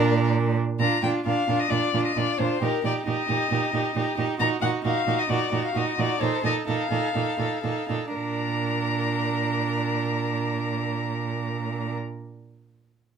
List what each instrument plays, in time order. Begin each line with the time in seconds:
Already playing: cello A#2, viola D4, violin A#4
0.79 cello A#2, viola D4, violin F4 A#5
1.03 cello A#2, viola D4, violin F4 G5
1.25 cello A#2, viola D4, violin F4 F5
1.48 cello A#2, viola D4, violin F4
1.59 violin D#5
1.70 cello A#2, viola D4, violin F4 D5
1.94 cello A#2, viola D4, violin F4
2.05 violin D#5
2.16 cello A#2, viola D4, violin F4 D5
2.39 cello A#2, viola D4, violin F4 C5
2.62 cello A#2, viola D#4, violin G4 A#4
2.84 cello A#2, viola D#4, violin G4 D5
3.06 cello A#2, viola D#4, violin G4 D#5
3.28 cello A#2, viola D#4, violin G4
3.51 cello A#2, viola D#4, violin G4
3.73 cello A#2, viola D#4, violin G4
3.95 cello A#2, viola D#4, violin G4
4.17 cello A#2, viola D#4, violin G4
4.39 cello A#2, viola D#4, violin F#4 A#5
4.62 cello A#2, viola D#4, violin F#4 F#5
4.84 cello A#2, viola D#4, violin F#4 F5
5.07 cello A#2, viola D#4, violin F#4
5.19 violin D#5
5.30 cello A#2, viola D#4, violin F#4 D5
5.52 cello A#2, viola D#4, violin F#4
5.65 violin F5
5.74 cello A#2, viola D#4, violin F#4 D#5
5.98 cello A#2, viola D#4, violin F#4 D5
6.20 cello A#2, viola D#4, violin A4 C5
6.43 cello A#2, viola D#4, violin A4 D#5
6.67 cello A#2, viola D#4, violin A4 F5
6.91 cello A#2, viola D#4, violin A4
7.14 cello A#2, viola D#4, violin A4
7.39 cello A#2, viola D#4, violin A4
7.63 cello A#2, viola D#4, violin A4
7.89 cello A#2, viola D#4, violin A4
8.13 cello A#2, viola D4, violin A#4 A#5